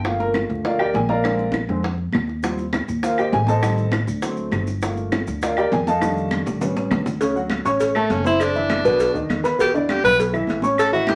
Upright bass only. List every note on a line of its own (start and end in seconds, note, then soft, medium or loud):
0.00 0.44 G1 medium
0.49 0.91 D2 medium
0.95 1.64 A#1 loud
1.69 2.10 F2 medium
2.13 2.83 D#2 medium
2.88 3.30 D#2 medium
3.33 4.02 A1 loud
4.07 4.49 D2 loud
4.52 5.21 G1 medium
5.27 5.69 D2 medium
5.72 6.41 F2 loud
6.46 6.88 A1 medium
6.90 7.60 D2 loud
7.65 8.07 A1 medium
8.10 8.79 F#1 medium
8.85 9.13 B1 loud
9.14 9.28 D2 medium
9.29 9.98 E2 medium
10.04 10.45 B1 loud
10.48 11.15 A1 medium